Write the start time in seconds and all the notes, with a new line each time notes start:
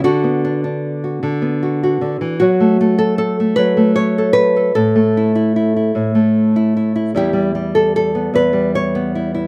0.04 D3 F#4
0.24 B3
0.45 D4
0.64 D4
1.04 F#4
1.23 D3
1.42 B3
1.63 F#4
1.83 F#4
2.01 D3
2.21 E3
2.40 F#3 F#4
2.60 A3
2.81 A3
2.98 A4
3.18 A4
3.40 A3
3.56 F#3 B4
3.77 A3
3.96 C#5
4.18 A4
4.33 B4
4.56 A4
4.75 A2 A4
4.96 A3
5.17 E4
5.35 E4
5.56 E4
5.76 E4
5.95 A2
6.15 A3
6.56 E4
6.77 E4
6.96 E4
7.15 E2 G3 E4 G4
7.33 G3
7.55 G3
7.75 A4
7.96 A4
8.15 B3
8.34 E2 B4
8.53 G3
8.75 C#5
8.95 B3
9.15 E4
9.35 E4